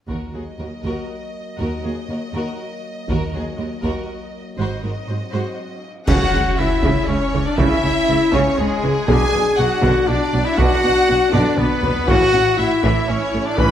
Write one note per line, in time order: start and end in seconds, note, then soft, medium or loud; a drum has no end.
0.08 0.16 D#2 soft
0.08 0.32 D#2 soft
0.08 4.55 F#3 soft
0.08 4.55 A#3 soft
0.08 0.32 F#4 soft
0.08 0.32 A#4 soft
0.08 4.55 D#5 soft
0.08 taiko soft
0.34 0.42 D#2 soft
0.34 0.42 F#4 soft
0.34 0.42 G#4 soft
0.59 0.67 D#2 soft
0.59 0.67 F#4 soft
0.59 0.67 A#4 soft
0.83 0.92 D#2 soft
0.83 1.07 F#4 soft
0.83 1.07 A#4 soft
0.83 taiko soft
1.58 1.67 D#2 soft
1.58 1.82 D#2 soft
1.58 1.82 F#4 soft
1.58 1.82 A#4 soft
1.84 1.92 D#2 soft
1.84 1.93 F#4 soft
1.84 1.92 G#4 soft
2.09 2.17 D#2 soft
2.09 2.17 F#4 soft
2.09 2.18 A#4 soft
2.34 2.42 D#2 medium
2.34 2.57 F#4 soft
2.34 2.57 A#4 soft
3.08 3.32 D#2 medium
3.08 3.17 D#2 soft
3.08 3.32 F#4 medium
3.08 3.32 A#4 medium
3.08 taiko soft
3.34 3.42 D#2 soft
3.34 3.42 F#4 soft
3.34 3.43 G#4 soft
3.58 3.67 D#2 soft
3.58 3.66 F#4 soft
3.58 3.67 A#4 soft
3.83 3.92 D#2 medium
3.83 4.07 F#4 soft
3.83 4.07 A#4 medium
3.83 taiko soft
4.58 4.82 G#1 medium
4.58 4.66 G#2 soft
4.58 5.80 F#3 soft
4.58 5.80 C4 soft
4.58 4.82 F#4 soft
4.58 4.82 C5 soft
4.58 5.86 D#5 soft
4.83 4.91 G#2 soft
4.83 4.91 F#4 soft
4.83 4.91 A#4 soft
5.08 5.16 G#2 soft
5.08 5.17 F#4 soft
5.08 5.16 C5 soft
5.32 5.41 G#2 soft
5.32 5.56 F#4 soft
5.32 5.56 C5 soft
6.07 6.17 C#2 loud
6.07 6.26 C#3 medium
6.07 6.32 C#3 medium
6.07 6.16 C#3 medium
6.07 6.25 C#4 medium
6.07 9.04 C#4 medium
6.07 6.55 F#4 medium
6.07 6.60 F#4 loud
6.07 6.54 F#5 loud
6.07 6.55 F#5 loud
6.07 concert bass drum medium
6.07 taiko loud
6.07 crash medium
6.07 impact medium
6.33 6.41 C#2 medium
6.33 6.42 C#3 medium
6.33 6.42 G#3 medium
6.57 6.66 C#2 medium
6.57 6.67 C#3 medium
6.57 6.67 E3 medium
6.57 7.07 E4 medium
6.57 7.09 E4 medium
6.57 7.07 E5 medium
6.83 6.92 C#2 medium
6.83 7.07 C#3 medium
6.83 6.92 C#3 medium
6.83 taiko medium
7.08 7.17 C#2 medium
7.08 7.17 C#3 medium
7.08 7.16 G#3 medium
7.08 7.45 C#4 medium
7.08 7.46 C#4 medium
7.08 7.46 C#5 medium
7.34 7.42 C#2 medium
7.34 7.42 C#3 medium
7.34 7.42 E3 medium
7.45 7.59 D4 medium
7.45 7.59 D5 medium
7.57 7.67 C#2 medium
7.57 7.81 C#3 medium
7.57 7.66 C#3 medium
7.57 7.76 C#3 medium
7.57 7.76 C#4 medium
7.57 8.34 E4 loud
7.57 8.33 E5 medium
7.57 8.33 E5 loud
7.57 taiko loud
7.83 7.92 C#2 medium
7.83 7.91 C#3 medium
7.83 7.91 G#3 medium
8.08 8.17 C#2 medium
8.08 8.16 C#3 medium
8.08 8.17 E3 medium
8.32 8.42 C#2 loud
8.32 8.57 C#3 medium
8.32 8.42 C#3 medium
8.32 8.59 C#4 medium
8.32 8.59 C#4 loud
8.32 8.58 C#5 medium
8.32 taiko medium
8.57 8.67 C#2 medium
8.57 8.66 C#3 medium
8.57 9.09 G#3 medium
8.57 8.67 G#3 medium
8.57 9.09 G#3 loud
8.57 9.09 G#4 medium
8.57 9.08 G#4 medium
8.83 8.92 C#2 medium
8.83 8.92 C#3 medium
8.83 8.91 E3 medium
9.07 9.17 B1 loud
9.07 9.26 B2 medium
9.07 9.16 B2 medium
9.07 9.32 D3 loud
9.07 9.26 D4 medium
9.07 12.05 D4 medium
9.07 9.57 G#4 loud
9.07 9.58 G#4 loud
9.07 9.58 G#5 loud
9.07 9.59 G#5 loud
9.07 taiko loud
9.33 9.42 B1 medium
9.33 9.41 B2 medium
9.33 9.42 B3 medium
9.58 9.67 B1 medium
9.58 9.66 B2 medium
9.58 9.67 F#3 medium
9.58 10.09 F#4 medium
9.58 10.09 F#4 loud
9.58 10.08 F#5 loud
9.58 10.09 F#5 medium
9.82 9.92 B1 loud
9.82 9.90 B2 loud
9.82 10.07 D3 medium
9.82 taiko medium
10.07 10.17 B1 medium
10.07 10.16 B2 medium
10.07 10.17 B3 medium
10.07 10.46 D4 medium
10.07 10.47 D4 loud
10.07 10.45 D5 medium
10.07 10.46 D5 loud
10.33 10.42 B1 medium
10.33 10.41 B2 medium
10.33 10.41 F#3 medium
10.45 10.59 E4 medium
10.45 10.59 E4 loud
10.45 10.58 E5 medium
10.45 10.58 E5 loud
10.57 10.67 B1 loud
10.57 10.66 B2 medium
10.57 10.76 B2 medium
10.57 10.82 D3 medium
10.57 10.76 D4 medium
10.57 11.35 F#4 loud
10.57 11.32 F#4 loud
10.57 11.33 F#5 loud
10.57 11.34 F#5 loud
10.57 taiko loud
10.83 10.92 B1 medium
10.83 10.92 B2 medium
10.83 10.91 B3 medium
11.07 11.17 B1 medium
11.07 11.17 B2 medium
11.07 11.15 F#3 medium
11.33 11.42 B1 loud
11.33 11.42 B2 loud
11.33 11.56 D3 medium
11.33 11.60 D4 medium
11.33 11.59 D4 loud
11.33 11.58 D5 loud
11.33 11.58 D5 medium
11.33 taiko low-mid medium
11.57 11.68 B1 medium
11.57 11.67 B2 medium
11.57 11.65 B3 medium
11.57 12.08 B3 loud
11.57 12.08 B4 loud
11.57 12.09 B4 medium
11.57 taiko mid medium
11.82 11.93 B1 medium
11.82 11.92 B2 medium
11.82 11.90 F#3 medium
11.82 taiko low medium
12.07 12.18 A1 loud
12.07 12.17 A2 medium
12.07 12.25 C#3 medium
12.07 12.32 E3 medium
12.07 12.25 C#4 medium
12.07 13.71 E4 medium
12.07 12.59 F#4 loud
12.07 12.58 F#4 loud
12.07 12.58 F#5 loud
12.07 12.59 F#5 loud
12.07 taiko loud
12.33 12.43 A1 medium
12.33 12.41 A2 medium
12.33 12.41 C#4 medium
12.57 12.67 A1 medium
12.57 12.67 A2 medium
12.57 12.66 A3 medium
12.57 12.92 E4 loud
12.57 13.10 E4 medium
12.57 13.09 E5 loud
12.57 13.09 E5 medium
12.83 12.92 A1 loud
12.83 12.92 A2 loud
12.83 13.07 E3 medium
12.83 taiko medium
13.07 13.17 A1 medium
13.07 13.17 A2 medium
13.07 13.45 C#4 loud
13.07 13.47 C#4 medium
13.07 13.17 C#4 medium
13.07 13.45 C#5 loud
13.07 13.47 C#5 medium
13.34 13.42 A1 medium
13.34 13.42 A2 medium
13.34 13.42 A3 medium
13.45 13.59 D4 medium
13.45 13.60 D4 medium
13.45 13.58 D5 medium
13.45 13.59 D5 medium
13.58 13.67 A1 medium
13.58 13.67 A2 medium
13.58 13.71 C#3 medium
13.58 13.71 E3 medium
13.58 13.71 C#4 medium
13.58 13.71 B4 loud
13.58 13.71 B5 loud
13.58 taiko loud